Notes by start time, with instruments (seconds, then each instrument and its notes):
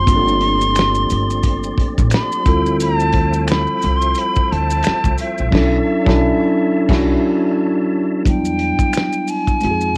Already playing: tonewheel organ F3 G4, flute C6
0.05 upright bass G1, tine electric piano A#3 C4 D4 F4, tonewheel organ D5, kick, closed hi-hat, maracas
0.10 tine electric piano G4
0.16 tine electric piano A4
0.28 maracas
0.41 closed hi-hat
0.61 maracas
0.75 finger snap, snare, closed hi-hat, maracas
0.79 finger snap
0.95 maracas
1.10 upright bass G1, closed hi-hat, maracas
1.30 maracas
1.43 kick, closed hi-hat, maracas
1.64 maracas
1.78 muted upright bass stroke, kick, closed hi-hat
1.98 upright bass A1, kick, maracas
2.10 flute B5, finger snap, closed hi-hat, maracas
2.14 finger snap, snare
2.32 maracas
2.44 upright bass D2, tine electric piano G3 C4 E4 F4, tonewheel organ C5 E5 G5, kick, closed hi-hat, maracas
2.48 tine electric piano A4
2.66 maracas
2.80 flute A5, closed hi-hat, maracas
3.00 maracas
3.12 kick, closed hi-hat
3.33 maracas
3.48 flute B5, finger snap, snare, closed hi-hat, maracas
3.52 finger snap
3.67 maracas
3.82 upright bass C2, closed hi-hat, maracas
3.96 flute C6
4.02 maracas
4.15 closed hi-hat, maracas
4.19 flute B5
4.36 kick, maracas
4.52 upright bass D2, flute A5, closed hi-hat
4.70 maracas
4.83 finger snap, closed hi-hat, maracas
4.87 finger snap, muted upright bass stroke, snare
5.04 upright bass C2, kick, maracas
5.18 flute E5, closed hi-hat, maracas
5.38 upright bass A#1, maracas
5.51 upright bass B1, tine electric piano F#3 C#4 D4 E4, tonewheel organ D4 C#5 E5 A5, kick, crash
5.55 tine electric piano A4, snare
6.05 upright bass B1, tine electric piano F#3 C#4 D4 E4, kick
6.09 tine electric piano A4, snare
6.89 upright bass B1, tine electric piano F#3 C#4 D4 E4 F#4, kick, snare, crash
8.24 upright bass E2, tine electric piano G3 B3 D4 E4, kick, closed hi-hat, maracas
8.28 tine electric piano F#3, flute G5
8.45 maracas
8.59 closed hi-hat
8.79 muted upright bass stroke, kick, maracas
8.93 finger snap, closed hi-hat, maracas
8.97 finger snap, snare
9.13 maracas
9.28 flute G#5, open hi-hat, maracas
9.47 kick, closed hi-hat, maracas
9.61 upright bass F2, tine electric piano G#3 C4 D#4 F4, closed hi-hat, maracas
9.65 tine electric piano G4
9.71 tine electric piano G#4
9.81 maracas